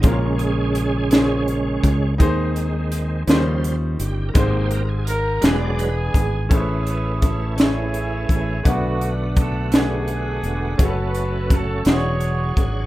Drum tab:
HH |xxxxxx|xxxxxx|xxxxxx|xxxxxx|
SD |---o--|---o--|---o--|---o--|
BD |o----o|o-----|o----o|o-o--o|

HH |xxxxxx|xxxxxx|
SD |---o--|---o--|
BD |o-o---|o-o--o|